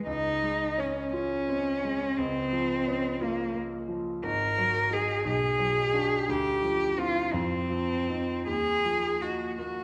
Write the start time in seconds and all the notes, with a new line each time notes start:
0.06 C#2 D#4
0.43 G#3
0.78 C#4
1.13 C#4 F4
1.49 C4
1.84 G#3
2.17 C#2 C4
2.52 F3
2.87 C#4
3.21 A#3 F4
3.54 A#3
3.88 F3
4.23 G#1 A#4
4.58 F#3
4.91 D#4 G#4
5.25 B1 G#4
5.59 F#3
5.94 D4 F#4
6.28 D2 G4
6.62 F3
6.98 C4 E4 F4
7.33 F2 C4
7.70 F3
8.09 C4 D#4
8.46 D#2 G#4
8.85 F3
9.21 D#4 F#4
9.58 A#3 F#4